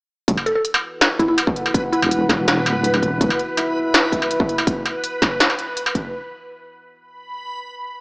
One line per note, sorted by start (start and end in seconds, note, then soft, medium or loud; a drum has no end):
0.28 0.37 E1 loud
0.28 4.63 E4 medium
0.28 6.14 B4 medium
0.28 4.63 B4 medium
0.28 4.63 F#5 loud
0.28 kick loud
0.28 closed hi-hat medium
0.37 struck metal medium
0.46 0.52 A4 medium
0.46 closed hi-hat soft
0.55 0.61 A4 medium
0.65 closed hi-hat medium
0.74 struck metal medium
1.01 snare loud
1.01 closed hi-hat medium
1.01 struck metal medium
1.19 1.26 E4 medium
1.19 kick medium
1.19 closed hi-hat soft
1.28 1.34 E4 medium
1.38 closed hi-hat medium
1.38 struck metal medium
1.47 kick loud
1.56 closed hi-hat soft
1.66 struck metal medium
1.74 kick loud
1.74 closed hi-hat medium
1.93 2.20 E4 medium
1.93 closed hi-hat soft
2.02 2.68 E1 loud
2.02 struck metal medium
2.11 closed hi-hat medium
2.29 kick loud
2.29 snare medium
2.29 closed hi-hat soft
2.29 struck metal medium
2.48 snare loud
2.48 closed hi-hat medium
2.66 3.01 D1 loud
2.66 closed hi-hat soft
2.66 struck metal medium
2.84 closed hi-hat medium
2.94 struck metal medium
3.02 3.19 E1 loud
3.02 kick medium
3.02 closed hi-hat soft
3.21 3.30 E1 loud
3.21 kick loud
3.21 closed hi-hat medium
3.30 struck metal medium
3.39 closed hi-hat soft
3.57 3.75 E4 medium
3.57 closed hi-hat medium
3.57 struck metal medium
3.94 snare loud
3.94 closed hi-hat medium
3.94 struck metal medium
4.12 4.30 E4 medium
4.12 kick medium
4.12 closed hi-hat soft
4.22 struck metal medium
4.31 closed hi-hat medium
4.40 kick loud
4.49 closed hi-hat soft
4.58 struck metal medium
4.67 kick loud
4.67 closed hi-hat medium
4.86 closed hi-hat soft
4.86 struck metal medium
5.04 closed hi-hat medium
5.22 kick loud
5.22 snare medium
5.22 closed hi-hat soft
5.22 struck metal medium
5.40 snare loud
5.40 closed hi-hat medium
5.50 struck metal medium
5.59 closed hi-hat soft
5.77 closed hi-hat medium
5.86 struck metal medium
5.95 kick medium
5.95 closed hi-hat soft